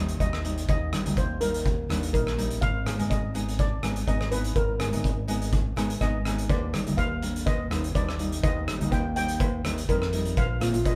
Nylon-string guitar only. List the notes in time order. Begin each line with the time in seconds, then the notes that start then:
Already playing: G3 A#3 D#4
0.20 G3 A#3 D#4
0.44 G3 A#3 D#4
0.93 G3 A#3 D#4
1.06 G3 A#3 D#4
1.41 G3 A#3 D#4
1.89 G3 A#3 D4
2.13 G3 A#3 D#4
2.37 G3 A#3 D#4
2.86 G#3 B3 D#4
2.98 G#3 B3 D#4
3.34 G#3 B3 D#4
3.83 G#3 B3 D#4
4.07 G#3 B3 D#4
4.31 G#3 B3 D#4
4.80 G#3 B3 D#4
4.92 G#3 B3 D#4
5.28 G#3 B3 D#4
5.76 G#3 B3 D#4
6.01 G#3 B3 D#4
6.26 G#3 B3 D#4
6.73 G3 A#3 D#4
6.87 G3 A#3 D#4
7.22 G3 A#3 D4
7.71 G3 A#3 D#4
7.95 G3 A#3 D#4
8.19 G3 A#3 D#4
8.68 G3 A#3 D#4
8.81 G3 A#3 D#4
9.17 G3 A#3 D#4
9.64 G3 A#3 D#4
9.89 G3 A#3 D#4
10.13 G3 A#3 D#4
10.60 A#3 C4 F4
10.72 A#3 C4 F4